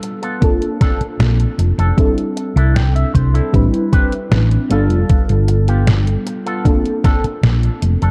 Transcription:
0.00 0.34 G3 medium
0.00 0.34 B3 medium
0.00 0.34 D4 medium
0.00 0.35 F4 medium
0.00 0.35 A4 medium
0.00 muted clean electric guitar stroke medium
0.00 closed hi-hat medium
0.22 0.42 B3 medium
0.22 0.42 F4 medium
0.22 0.42 A4 medium
0.22 closed hi-hat soft
0.41 1.90 A#3 medium
0.41 1.90 C4 medium
0.41 1.90 D4 medium
0.41 1.91 F4 medium
0.41 1.91 A4 medium
0.41 kick loud
0.41 closed hi-hat medium
0.62 closed hi-hat soft
0.81 1.01 C4 medium
0.81 1.01 D4 medium
0.81 1.01 A4 medium
0.81 kick loud
0.81 snare medium
0.81 closed hi-hat medium
1.01 muted fingered electric bass stroke soft
1.01 closed hi-hat soft
1.19 1.44 A#1 medium
1.19 snare loud
1.19 closed hi-hat medium
1.40 closed hi-hat soft
1.58 1.71 F1 medium
1.58 muted clean electric guitar stroke medium
1.58 closed hi-hat loud
1.78 1.90 F1 medium
1.78 1.98 C4 medium
1.78 1.98 D4 medium
1.78 1.98 A4 medium
1.78 closed hi-hat soft
1.97 3.45 G3 medium
1.97 3.46 C4 medium
1.97 3.46 D4 medium
1.97 3.47 E4 medium
1.97 3.47 A4 medium
1.97 kick loud
1.97 closed hi-hat medium
2.18 closed hi-hat soft
2.36 muted clean electric guitar stroke medium
2.36 closed hi-hat medium
2.56 3.03 C2 loud
2.56 2.76 D4 medium
2.56 2.75 E4 medium
2.56 2.76 A4 medium
2.56 closed hi-hat soft
2.76 2.94 G5 medium
2.76 snare loud
2.76 closed hi-hat medium
2.95 3.13 E5 medium
2.95 closed hi-hat soft
3.14 3.39 C2 medium
3.14 3.51 C5 medium
3.14 muted clean electric guitar stroke medium
3.14 kick medium
3.14 closed hi-hat medium
3.34 3.54 D4 medium
3.34 3.54 E4 medium
3.34 3.54 A4 medium
3.34 closed hi-hat soft
3.52 3.66 A1 medium
3.52 4.62 G3 medium
3.52 4.63 C4 medium
3.52 4.63 D4 medium
3.52 4.63 E4 medium
3.52 4.64 B4 medium
3.52 kick loud
3.52 closed hi-hat medium
3.74 closed hi-hat soft
3.92 4.12 C4 medium
3.92 4.12 D4 medium
3.92 4.12 G4 medium
3.92 4.12 B4 medium
3.92 kick loud
3.92 closed hi-hat medium
4.12 closed hi-hat soft
4.31 4.56 A1 medium
4.31 snare loud
4.31 closed hi-hat medium
4.51 closed hi-hat soft
4.69 4.90 G1 medium
4.69 6.57 G3 medium
4.69 6.58 B3 medium
4.69 5.33 B3 medium
4.69 6.58 D4 medium
4.69 5.33 F4 medium
4.69 6.58 F4 medium
4.69 5.33 A4 loud
4.69 6.59 A4 loud
4.69 closed hi-hat medium
4.90 5.02 F1 loud
4.90 closed hi-hat soft
5.09 muted fingered electric bass stroke soft
5.09 kick loud
5.09 closed hi-hat medium
5.29 6.15 G1 medium
5.29 closed hi-hat soft
5.48 muted clean electric guitar stroke medium
5.48 closed hi-hat medium
5.68 5.87 B3 medium
5.68 5.87 F4 medium
5.68 5.88 G4 medium
5.68 closed hi-hat soft
5.87 snare loud
5.87 closed hi-hat medium
6.07 closed hi-hat soft
6.26 muted clean electric guitar stroke medium
6.26 closed hi-hat medium
6.46 6.66 B3 medium
6.46 6.65 F4 medium
6.46 6.66 A4 medium
6.46 closed hi-hat soft
6.64 8.11 A#3 medium
6.64 8.11 C4 medium
6.64 8.11 D4 medium
6.64 8.11 F4 medium
6.64 8.11 A4 medium
6.64 kick loud
6.64 closed hi-hat medium
6.86 closed hi-hat soft
7.04 7.24 C4 medium
7.04 7.24 D4 medium
7.04 7.24 A4 medium
7.04 kick loud
7.04 snare medium
7.04 closed hi-hat medium
7.24 muted fingered electric bass stroke soft
7.24 closed hi-hat soft
7.43 7.68 A#1 loud
7.43 snare loud
7.43 closed hi-hat medium
7.63 closed hi-hat soft
7.82 7.95 F1 medium
7.82 muted clean electric guitar stroke medium
7.82 closed hi-hat medium
8.02 8.11 F1 medium
8.02 8.11 C4 medium
8.02 8.11 D4 medium
8.02 8.11 A4 medium
8.02 closed hi-hat soft

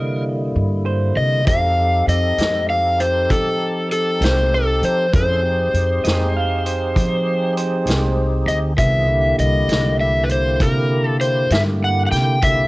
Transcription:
0.00 0.51 C3 medium
0.00 1.43 D3 medium
0.00 1.43 G3 soft
0.00 1.43 A#3 medium
0.00 1.43 E4 soft
0.00 0.23 A#4 medium
0.00 0.83 D#5 medium
0.55 1.13 G2 medium
0.86 1.16 C5 medium
1.16 1.44 C3 medium
1.16 1.48 D#5 medium
1.45 2.04 F2 medium
1.45 5.08 C4 medium
1.45 5.07 D#4 medium
1.45 5.08 G4 medium
1.45 5.08 A4 soft
1.45 2.05 F5 medium
1.45 kick loud
1.45 closed hi-hat medium
2.07 2.35 F2 medium
2.07 2.69 D#5 medium
2.07 closed hi-hat medium
2.38 3.25 F2 medium
2.38 snare medium
2.38 closed hi-hat medium
2.70 3.01 F5 medium
3.00 3.31 C5 medium
3.00 closed hi-hat medium
3.30 4.17 F3 medium
3.30 3.91 A4 medium
3.30 kick medium
3.30 closed hi-hat medium
3.91 4.23 A4 medium
3.91 closed hi-hat medium
4.21 4.78 C2 medium
4.21 4.54 C5 medium
4.21 snare loud
4.21 closed hi-hat medium
4.54 4.84 A4 medium
4.82 5.10 F3 medium
4.82 5.12 C5 medium
4.82 closed hi-hat soft
5.13 5.70 F2 loud
5.13 5.43 C#4 soft
5.13 5.43 E4 soft
5.13 5.41 G#4 medium
5.13 5.43 A4 medium
5.13 7.53 C5 medium
5.13 kick loud
5.13 closed hi-hat medium
5.42 8.74 C4 medium
5.42 8.73 D#4 medium
5.42 8.74 G4 medium
5.42 8.74 G#4 medium
5.73 6.01 F2 medium
5.73 closed hi-hat soft
6.04 6.91 F2 medium
6.04 6.33 D#5 medium
6.04 snare loud
6.04 closed hi-hat medium
6.36 6.65 F5 medium
6.66 7.54 C5 medium
6.66 closed hi-hat medium
6.96 7.83 F3 medium
6.96 kick medium
6.96 closed hi-hat medium
7.57 8.30 C5 medium
7.57 closed hi-hat medium
7.86 8.43 C2 medium
7.86 snare medium
7.86 closed hi-hat medium
8.46 8.74 D2 medium
8.46 8.56 D#5 medium
8.46 closed hi-hat medium
8.77 9.34 C2 medium
8.77 9.07 D#3 soft
8.77 9.08 B3 medium
8.77 9.08 F4 soft
8.77 9.08 G#4 soft
8.77 9.40 E5 medium
8.77 kick medium
8.77 closed hi-hat medium
9.08 12.39 D3 medium
9.08 12.39 A#3 medium
9.08 12.39 E4 medium
9.08 12.39 G4 medium
9.39 9.66 C2 medium
9.39 10.00 D#5 medium
9.39 closed hi-hat soft
9.68 10.56 C2 medium
9.68 snare loud
9.68 closed hi-hat medium
10.01 10.24 E5 medium
10.24 10.30 B4 medium
10.29 10.62 C5 medium
10.29 closed hi-hat soft
10.60 11.47 C3 medium
10.60 11.06 A#4 medium
10.60 kick medium
10.60 closed hi-hat medium
11.06 11.21 A4 medium
11.21 11.52 C5 medium
11.21 closed hi-hat soft
11.50 12.07 G2 medium
11.50 11.60 E5 medium
11.50 snare loud
11.50 closed hi-hat medium
11.84 12.05 F#5 medium
12.07 12.11 F#5 medium
12.12 12.40 C3 medium
12.12 12.43 G5 medium
12.12 snare soft
12.12 closed hi-hat medium
12.42 12.68 C2 medium
12.42 12.68 D3 medium
12.42 12.68 A#3 medium
12.42 12.68 E4 medium
12.42 12.68 G4 medium
12.42 12.68 E5 medium
12.42 kick loud
12.42 closed hi-hat medium

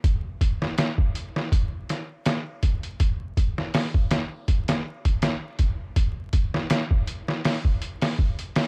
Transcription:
0.04 kick loud
0.04 closed hi-hat medium
0.41 kick medium
0.41 closed hi-hat medium
0.62 snare medium
0.78 snare loud
0.78 closed hi-hat medium
0.98 kick loud
1.15 closed hi-hat medium
1.36 snare medium
1.52 kick loud
1.52 closed hi-hat medium
1.89 snare soft
1.89 closed hi-hat medium
2.26 snare loud
2.26 closed hi-hat medium
2.63 kick medium
2.63 closed hi-hat medium
2.83 closed hi-hat soft
3.00 kick loud
3.00 closed hi-hat medium
3.37 kick medium
3.37 closed hi-hat medium
3.58 snare soft
3.74 snare loud
3.74 open hi-hat medium
3.94 kick medium
4.11 snare loud
4.11 closed hi-hat medium
4.48 kick medium
4.48 closed hi-hat medium
4.68 snare loud
4.68 closed hi-hat medium
5.05 kick medium
5.05 closed hi-hat medium
5.22 snare loud
5.22 closed hi-hat medium
5.59 kick medium
5.59 closed hi-hat medium
5.96 kick loud
5.96 closed hi-hat medium
6.33 kick medium
6.33 closed hi-hat medium
6.54 snare medium
6.70 snare loud
6.70 closed hi-hat loud
6.91 kick loud
7.07 closed hi-hat medium
7.28 snare medium
7.45 snare loud
7.45 open hi-hat medium
7.65 kick medium
7.82 closed hi-hat medium
8.02 snare loud
8.02 open hi-hat medium
8.19 kick medium
8.39 closed hi-hat medium
8.56 snare loud
8.56 open hi-hat medium

